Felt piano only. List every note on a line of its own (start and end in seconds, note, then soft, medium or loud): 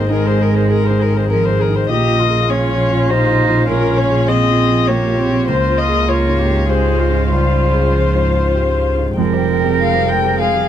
0.00 0.10 G#2 medium
0.00 0.22 D#3 soft
0.00 0.13 G#4 soft
0.00 0.13 A#4 soft
0.10 1.85 G#2 medium
0.30 0.62 G#4 soft
0.50 0.82 A#4 soft
0.70 1.02 G#4 soft
0.90 1.22 D#3 soft
1.10 1.42 G#4 soft
1.30 1.50 A#4 soft
1.49 1.82 G#4 soft
1.70 1.90 D#3 soft
1.89 3.64 A#2 medium
2.09 2.41 F4 soft
2.29 2.61 G#4 soft
2.49 2.81 F4 medium
2.69 3.01 F3 soft
2.89 3.21 F4 medium
3.09 3.29 G4 soft
3.30 3.61 F4 soft
3.49 3.81 F3 soft
3.69 5.44 A#2 medium
3.89 4.21 F4 soft
4.10 4.41 G#4 medium
4.49 4.80 F3 medium
4.69 5.00 F4 medium
4.89 5.08 G4 soft
5.09 5.41 F4 soft
5.29 5.48 F3 soft
5.49 7.27 C#2 medium
5.68 6.00 F4 soft
5.88 6.20 G#4 medium
6.08 6.41 F4 soft
6.28 6.61 G#2 soft
6.49 6.81 F4 soft
6.69 6.89 G4 soft
6.90 7.23 F4 soft
7.10 7.43 G#2 soft
7.31 9.14 C#2 medium
7.52 7.85 F4 soft
7.74 8.06 G#4 soft
7.94 8.27 F4 soft
8.15 8.48 G#2 soft
8.36 8.68 F4 soft
8.55 8.76 G4 soft
8.76 9.09 F4 soft
8.98 9.18 G#2 soft
9.18 10.69 F2 medium
9.34 9.58 C5 soft
9.49 9.73 G#4 soft
9.64 9.89 C4 soft
9.79 10.04 F4 soft
9.94 10.19 C5 medium
10.10 10.34 G#4 soft
10.26 10.49 C5 soft
10.40 10.64 G#4 medium
10.55 10.69 G4 soft